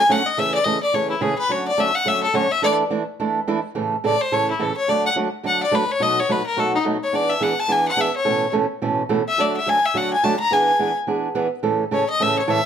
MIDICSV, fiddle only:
0, 0, Header, 1, 2, 480
1, 0, Start_track
1, 0, Key_signature, 3, "major"
1, 0, Tempo, 281294
1, 655, Time_signature, 4, 2, 24, 8
1, 21598, End_track
2, 0, Start_track
2, 0, Title_t, "Fiddle"
2, 0, Program_c, 0, 110
2, 0, Note_on_c, 0, 80, 103
2, 202, Note_on_c, 0, 78, 89
2, 227, Note_off_c, 0, 80, 0
2, 455, Note_on_c, 0, 75, 94
2, 481, Note_off_c, 0, 78, 0
2, 667, Note_on_c, 0, 76, 105
2, 693, Note_off_c, 0, 75, 0
2, 917, Note_off_c, 0, 76, 0
2, 927, Note_on_c, 0, 74, 100
2, 1108, Note_on_c, 0, 75, 90
2, 1133, Note_off_c, 0, 74, 0
2, 1401, Note_off_c, 0, 75, 0
2, 1411, Note_on_c, 0, 74, 87
2, 1610, Note_on_c, 0, 73, 81
2, 1636, Note_off_c, 0, 74, 0
2, 1872, Note_off_c, 0, 73, 0
2, 1882, Note_on_c, 0, 64, 48
2, 2090, Note_on_c, 0, 68, 77
2, 2116, Note_off_c, 0, 64, 0
2, 2350, Note_off_c, 0, 68, 0
2, 2360, Note_on_c, 0, 71, 84
2, 2589, Note_on_c, 0, 73, 84
2, 2615, Note_off_c, 0, 71, 0
2, 2850, Note_off_c, 0, 73, 0
2, 2860, Note_on_c, 0, 74, 88
2, 3082, Note_on_c, 0, 76, 90
2, 3107, Note_off_c, 0, 74, 0
2, 3328, Note_on_c, 0, 78, 105
2, 3354, Note_off_c, 0, 76, 0
2, 3554, Note_on_c, 0, 76, 91
2, 3579, Note_off_c, 0, 78, 0
2, 3801, Note_off_c, 0, 76, 0
2, 3811, Note_on_c, 0, 69, 79
2, 4014, Note_on_c, 0, 73, 84
2, 4039, Note_off_c, 0, 69, 0
2, 4295, Note_on_c, 0, 76, 105
2, 4320, Note_off_c, 0, 73, 0
2, 4485, Note_off_c, 0, 76, 0
2, 4502, Note_on_c, 0, 74, 95
2, 4675, Note_off_c, 0, 74, 0
2, 6923, Note_on_c, 0, 74, 78
2, 7179, Note_on_c, 0, 72, 84
2, 7204, Note_off_c, 0, 74, 0
2, 7398, Note_on_c, 0, 73, 91
2, 7424, Note_off_c, 0, 72, 0
2, 7678, Note_off_c, 0, 73, 0
2, 7693, Note_on_c, 0, 64, 46
2, 7891, Note_on_c, 0, 69, 73
2, 7917, Note_off_c, 0, 64, 0
2, 8125, Note_off_c, 0, 69, 0
2, 8135, Note_on_c, 0, 73, 90
2, 8353, Note_on_c, 0, 74, 79
2, 8379, Note_off_c, 0, 73, 0
2, 8625, Note_off_c, 0, 74, 0
2, 8635, Note_on_c, 0, 78, 98
2, 8743, Note_off_c, 0, 78, 0
2, 9335, Note_on_c, 0, 78, 81
2, 9588, Note_off_c, 0, 78, 0
2, 9605, Note_on_c, 0, 74, 94
2, 9811, Note_on_c, 0, 71, 79
2, 9837, Note_off_c, 0, 74, 0
2, 10093, Note_on_c, 0, 73, 95
2, 10119, Note_off_c, 0, 71, 0
2, 10282, Note_on_c, 0, 75, 92
2, 10308, Note_off_c, 0, 73, 0
2, 10576, Note_on_c, 0, 73, 89
2, 10601, Note_off_c, 0, 75, 0
2, 10779, Note_on_c, 0, 71, 78
2, 10805, Note_off_c, 0, 73, 0
2, 11014, Note_off_c, 0, 71, 0
2, 11024, Note_on_c, 0, 70, 82
2, 11254, Note_on_c, 0, 69, 74
2, 11279, Note_off_c, 0, 70, 0
2, 11511, Note_off_c, 0, 69, 0
2, 11521, Note_on_c, 0, 63, 90
2, 11628, Note_off_c, 0, 63, 0
2, 12008, Note_on_c, 0, 73, 84
2, 12205, Note_on_c, 0, 74, 87
2, 12230, Note_off_c, 0, 73, 0
2, 12457, Note_on_c, 0, 76, 80
2, 12483, Note_off_c, 0, 74, 0
2, 12673, Note_on_c, 0, 78, 84
2, 12699, Note_off_c, 0, 76, 0
2, 12969, Note_on_c, 0, 81, 106
2, 12995, Note_off_c, 0, 78, 0
2, 13170, Note_on_c, 0, 80, 93
2, 13195, Note_off_c, 0, 81, 0
2, 13436, Note_off_c, 0, 80, 0
2, 13447, Note_on_c, 0, 78, 99
2, 13666, Note_on_c, 0, 76, 88
2, 13691, Note_off_c, 0, 78, 0
2, 13915, Note_off_c, 0, 76, 0
2, 13925, Note_on_c, 0, 73, 88
2, 14537, Note_off_c, 0, 73, 0
2, 15836, Note_on_c, 0, 76, 96
2, 16053, Note_on_c, 0, 74, 82
2, 16079, Note_off_c, 0, 76, 0
2, 16312, Note_off_c, 0, 74, 0
2, 16322, Note_on_c, 0, 76, 91
2, 16537, Note_on_c, 0, 80, 100
2, 16562, Note_off_c, 0, 76, 0
2, 16817, Note_on_c, 0, 76, 91
2, 16843, Note_off_c, 0, 80, 0
2, 17017, Note_on_c, 0, 78, 89
2, 17043, Note_off_c, 0, 76, 0
2, 17277, Note_off_c, 0, 78, 0
2, 17287, Note_on_c, 0, 80, 90
2, 17473, Note_on_c, 0, 81, 82
2, 17499, Note_off_c, 0, 80, 0
2, 17727, Note_off_c, 0, 81, 0
2, 17737, Note_on_c, 0, 82, 110
2, 17973, Note_on_c, 0, 80, 92
2, 17999, Note_off_c, 0, 82, 0
2, 18729, Note_off_c, 0, 80, 0
2, 20369, Note_on_c, 0, 73, 79
2, 20627, Note_off_c, 0, 73, 0
2, 20643, Note_on_c, 0, 75, 92
2, 20860, Note_on_c, 0, 76, 101
2, 20886, Note_off_c, 0, 75, 0
2, 21124, Note_off_c, 0, 76, 0
2, 21134, Note_on_c, 0, 73, 53
2, 21338, Note_on_c, 0, 76, 91
2, 21363, Note_off_c, 0, 73, 0
2, 21598, Note_off_c, 0, 76, 0
2, 21598, End_track
0, 0, End_of_file